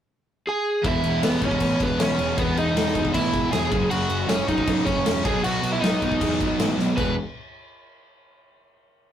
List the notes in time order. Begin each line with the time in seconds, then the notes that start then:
0.47 G#4 G#5
0.84 E1 E2 B2 E3 E4, kick, crash
0.88 E5
1.04 E1, crash
1.23 E1 E2 B2 E3 B3 B4, snare, crash
1.42 E1 E2 B2 E3 C#4 C#5, kick, crash
1.51 kick
1.60 A1 E2 B2 E3, kick, crash
1.80 E1 B3 B4, kick, crash
1.98 C#2 E2 B2 E3 C#4, snare, crash
2.03 C#5
2.18 E1 E2 B2 E3, crash
2.38 E1 E2 B2 E3 B3 B4, kick, crash
2.56 E1 D#4 D#5, crash
2.74 E1 E2 B2 E3, snare, crash
2.95 E1 E2 B2 E3, kick, crash
3.05 kick
3.13 A1 E2 B2 E3 E4 E5, kick, crash
3.33 E1, kick, crash
3.52 E1 E2 B2 E3 G#4 G#5, snare, crash
3.71 F#1 F#2 C#3 F#3, kick, crash
3.89 F#1 F#2 C#3 F#3 F#4 F#5, crash
4.09 F#1, crash
4.27 F#1 F#2 C#3 F#3 C#4 C#5, snare, crash
4.46 F#1 F#2 C#3 F#3 D#4 D#5, kick, crash
4.58 kick
4.66 B1 F#2 C#3 F#3, kick, crash
4.85 F#1 C#4 C#5, kick, crash
5.04 E1 F#2 C#3 F#3, snare, crash
5.23 B1 B2 F#3 B3 G#4 G#5, kick, crash
5.43 B1 B2 F#3 B3 F#4 F#5, crash
5.63 B1, crash
5.73 E4 E5
5.81 B1 B2 F#3 B3 D#4 D#5, snare, crash
6.01 B1 B2 F#3 B3, kick, crash
6.12 kick
6.21 E2 B2 F#3 B3, kick, crash
6.40 B1, kick, crash
6.59 A1 B2 F#3 B3, snare, crash
6.77 B1 B2 F#3 B3, snare
6.97 E1 E2 B2 E3 B4, kick, crash